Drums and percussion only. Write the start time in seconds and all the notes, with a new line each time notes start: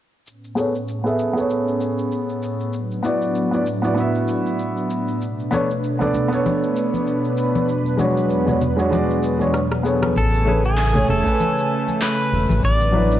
0.27 cabasa
0.44 cabasa
0.57 cabasa
0.75 cabasa
0.88 cabasa
1.06 cabasa
1.19 cabasa
1.37 cabasa
1.50 cabasa
1.68 cabasa
1.81 cabasa
1.99 cabasa
2.12 cabasa
2.29 cabasa
2.43 cabasa
2.60 cabasa
2.73 cabasa
2.91 cabasa
3.04 cabasa
3.22 cabasa
3.35 cabasa
3.53 cabasa
3.67 cabasa
3.84 cabasa
3.97 cabasa
4.15 cabasa
4.28 cabasa
4.46 cabasa
4.59 cabasa
4.77 cabasa
4.90 cabasa
5.08 cabasa
5.21 cabasa
5.39 cabasa
5.52 high conga, cabasa
5.70 cabasa
5.84 cabasa
6.01 high conga, low conga, cabasa
6.14 low conga, cabasa
6.32 cabasa
6.46 high conga, cabasa
6.63 cabasa
6.76 cabasa
6.94 high conga, cabasa
7.07 cabasa
7.25 cabasa
7.38 cabasa
7.55 high conga, cabasa
7.69 cabasa
7.86 cabasa
7.99 high conga, cabasa
8.17 cabasa
8.30 cabasa
8.47 high conga, low conga, cabasa
8.61 low conga, cabasa
8.79 cabasa
8.92 high conga, cabasa
9.10 cabasa
9.23 cabasa
9.41 high conga, cabasa
9.54 cross-stick, cabasa
9.72 cross-stick, cabasa
9.85 cabasa
10.03 cross-stick, high conga, cabasa
10.16 kick, cabasa
10.34 cabasa
10.47 high conga
10.65 cabasa
10.77 clap, cabasa
10.95 high conga, low conga, cabasa
11.09 low conga
11.26 kick, cabasa
11.40 high conga, cabasa
11.58 cabasa
11.88 high conga, cabasa
12.01 clap, cabasa
12.19 cabasa
12.49 high conga, cabasa
12.63 kick, cabasa
12.81 cabasa
12.93 high conga
13.11 cabasa